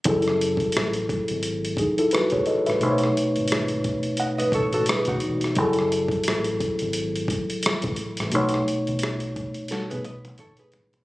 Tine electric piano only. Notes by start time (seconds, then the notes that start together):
0.05 F#3 E4 G#4
0.09 A4
1.79 D#4 G#4
1.99 E4 A4
2.13 F#4 B4
2.32 G#4 C#5
2.47 A4 D#5
2.66 B4 E5
2.80 B2 A3 D#4
2.84 C5
2.91 C#5
5.56 F#3 E4 G#4
5.60 A4
8.32 B2 A3 D#4
8.36 C#5